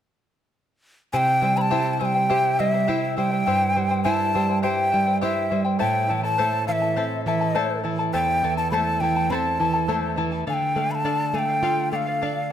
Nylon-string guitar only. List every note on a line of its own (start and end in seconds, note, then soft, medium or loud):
1.14 3.43 C3 medium
1.42 1.71 G3 soft
1.72 2.00 E4 soft
2.02 2.29 G3 soft
2.31 2.59 G4 medium
2.60 2.88 G3 soft
2.89 3.17 E4 soft
3.18 3.46 G3 soft
3.47 5.76 G2 medium
3.77 4.05 G3 soft
4.06 4.34 E4 soft
4.36 4.63 G3 soft
4.65 4.92 G4 medium
4.94 5.21 G3 soft
5.23 5.51 E4 soft
5.52 5.80 G3 medium
5.82 8.10 A2 medium
6.11 6.38 E3 soft
6.40 6.67 A3 soft
6.68 6.96 E3 soft
6.97 7.25 C4 medium
7.26 7.54 E3 soft
7.56 7.84 A3 soft
7.85 8.13 E3 soft
8.14 10.43 E2 medium
8.43 8.71 E3 soft
8.72 9.00 A3 soft
9.01 9.29 E3 soft
9.30 9.58 C4 medium
9.60 9.88 E3 soft
9.88 10.16 A3 soft
10.18 10.46 E3 soft
10.47 12.52 D3 medium
10.76 11.04 A3 soft
11.05 11.33 D4 soft
11.34 11.62 A3 soft
11.63 11.91 F4 medium
11.92 12.21 A3 soft
12.23 12.50 D4 soft